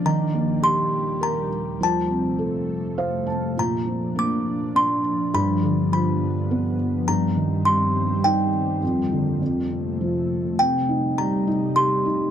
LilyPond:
<<
  \new Staff \with { instrumentName = "Music box" } { \time 3/4 \key c \dorian \tempo 4 = 102 bes''4 c'''4 bes''4 | a''2 r4 | bes''4 d'''4 c'''4 | b''4 b''4. r8 |
bes''4 c'''4 g''4~ | g''2~ g''8 r8 | g''4 bes''4 c'''4 | }
  \new Staff \with { instrumentName = "Felt piano" } { \time 3/4 \key c \dorian r2. | r2 f''8 a''8 | r2. | r2. |
r2. | r2. | r2. | }
  \new Staff \with { instrumentName = "Felt piano" } { \clef bass \time 3/4 \key c \dorian ees8 bes8 g'4 bes'4 | f8 c'8 a'4 c''4 | bes,8 f8 bes4 d'4 | g,8 d8 f4 b4 |
g,8 ees8 g4 ees'4 | f,8 d8 f,8 c8 f4 | c8 ees'8 g8 ees'8 g'8 ees'8 | }
  \new Staff \with { instrumentName = "Ambient pad" } { \clef bass \time 3/4 \key c \dorian << { <ees, bes, g>2. | <f, a>2. | <bes, d'>2. | <g, b>2. |
<g, ees c'>2. | <f, d bes>4 <f, a>2 | <c ees'>2. | } \\ { r2. | c2. | f2.~ | f2. |
g2. | f4 c2 | g2. | } >> }
>>